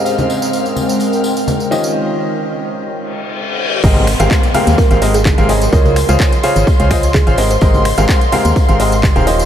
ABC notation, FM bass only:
X:1
M:4/4
L:1/16
Q:1/4=127
K:Ab
V:1 name="FM bass" clef=bass
z16 | z16 | A,,,3 A,,, z3 E,, z A,,,4 A,,,3 | D,,3 D,, z3 A,,, z D,,4 A,,,3 |
A,,,3 A,,, z3 E,, z A,,,4 E,,,3 |]